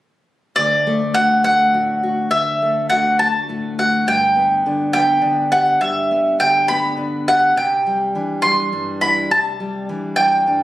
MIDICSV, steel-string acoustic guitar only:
0, 0, Header, 1, 2, 480
1, 0, Start_track
1, 0, Tempo, 580833
1, 474, Time_signature, 6, 3, 24, 8
1, 8785, End_track
2, 0, Start_track
2, 0, Title_t, "Steel-string acoustic guitar"
2, 0, Program_c, 0, 25
2, 475, Note_on_c, 0, 38, 58
2, 717, Note_on_c, 0, 57, 38
2, 950, Note_on_c, 0, 50, 43
2, 956, Note_on_c, 0, 66, 45
2, 1189, Note_off_c, 0, 57, 0
2, 1192, Note_on_c, 0, 57, 41
2, 1430, Note_off_c, 0, 66, 0
2, 1437, Note_on_c, 0, 45, 41
2, 1441, Note_on_c, 0, 66, 48
2, 1671, Note_off_c, 0, 66, 0
2, 1680, Note_on_c, 0, 66, 45
2, 1887, Note_off_c, 0, 57, 0
2, 1891, Note_off_c, 0, 66, 0
2, 1899, Note_off_c, 0, 38, 0
2, 1909, Note_on_c, 0, 38, 56
2, 1918, Note_off_c, 0, 45, 0
2, 2166, Note_on_c, 0, 57, 41
2, 2396, Note_off_c, 0, 50, 0
2, 2406, Note_on_c, 0, 50, 47
2, 2411, Note_on_c, 0, 66, 47
2, 2643, Note_off_c, 0, 57, 0
2, 2655, Note_on_c, 0, 57, 44
2, 2880, Note_off_c, 0, 66, 0
2, 2882, Note_on_c, 0, 45, 47
2, 2890, Note_on_c, 0, 66, 48
2, 3117, Note_off_c, 0, 66, 0
2, 3127, Note_on_c, 0, 66, 49
2, 3335, Note_off_c, 0, 66, 0
2, 3339, Note_off_c, 0, 57, 0
2, 3356, Note_off_c, 0, 38, 0
2, 3359, Note_on_c, 0, 43, 58
2, 3362, Note_off_c, 0, 45, 0
2, 3602, Note_on_c, 0, 59, 41
2, 3840, Note_off_c, 0, 50, 0
2, 3848, Note_on_c, 0, 50, 44
2, 3854, Note_on_c, 0, 62, 43
2, 4081, Note_off_c, 0, 59, 0
2, 4084, Note_on_c, 0, 59, 50
2, 4302, Note_off_c, 0, 50, 0
2, 4307, Note_off_c, 0, 62, 0
2, 4310, Note_on_c, 0, 62, 39
2, 4311, Note_on_c, 0, 50, 50
2, 4567, Note_on_c, 0, 67, 44
2, 4768, Note_off_c, 0, 50, 0
2, 4772, Note_off_c, 0, 43, 0
2, 4774, Note_off_c, 0, 59, 0
2, 4800, Note_on_c, 0, 43, 59
2, 5049, Note_on_c, 0, 59, 37
2, 5278, Note_on_c, 0, 50, 43
2, 5285, Note_off_c, 0, 62, 0
2, 5288, Note_on_c, 0, 62, 44
2, 5525, Note_off_c, 0, 59, 0
2, 5537, Note_on_c, 0, 59, 46
2, 5747, Note_off_c, 0, 50, 0
2, 5757, Note_on_c, 0, 50, 43
2, 5760, Note_off_c, 0, 62, 0
2, 5763, Note_on_c, 0, 62, 44
2, 6012, Note_off_c, 0, 67, 0
2, 6015, Note_on_c, 0, 67, 42
2, 6210, Note_off_c, 0, 50, 0
2, 6211, Note_off_c, 0, 43, 0
2, 6220, Note_off_c, 0, 59, 0
2, 6249, Note_on_c, 0, 48, 58
2, 6274, Note_off_c, 0, 62, 0
2, 6500, Note_on_c, 0, 55, 43
2, 6725, Note_off_c, 0, 48, 0
2, 6736, Note_on_c, 0, 52, 43
2, 6741, Note_on_c, 0, 62, 42
2, 6980, Note_off_c, 0, 55, 0
2, 6984, Note_on_c, 0, 55, 44
2, 7208, Note_on_c, 0, 43, 40
2, 7209, Note_off_c, 0, 62, 0
2, 7212, Note_on_c, 0, 62, 44
2, 7447, Note_off_c, 0, 67, 0
2, 7450, Note_on_c, 0, 64, 51
2, 7654, Note_off_c, 0, 43, 0
2, 7656, Note_off_c, 0, 64, 0
2, 7658, Note_off_c, 0, 52, 0
2, 7694, Note_on_c, 0, 48, 55
2, 7719, Note_off_c, 0, 62, 0
2, 7930, Note_off_c, 0, 55, 0
2, 7934, Note_on_c, 0, 55, 43
2, 8165, Note_off_c, 0, 48, 0
2, 8174, Note_on_c, 0, 52, 49
2, 8177, Note_on_c, 0, 62, 41
2, 8405, Note_off_c, 0, 55, 0
2, 8408, Note_on_c, 0, 55, 45
2, 8645, Note_on_c, 0, 43, 45
2, 8652, Note_off_c, 0, 62, 0
2, 8655, Note_on_c, 0, 62, 47
2, 8785, Note_off_c, 0, 43, 0
2, 8785, Note_off_c, 0, 52, 0
2, 8785, Note_off_c, 0, 55, 0
2, 8785, Note_off_c, 0, 62, 0
2, 8785, End_track
0, 0, End_of_file